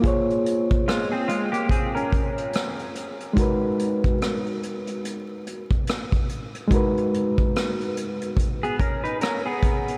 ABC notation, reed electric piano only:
X:1
M:4/4
L:1/8
Q:"Swing 16ths" 1/4=72
K:G#dor
V:1 name="Reed electric piano"
[A,EG^Bc]8 | [G,DFAB]8 | [G,DFAB]8 |]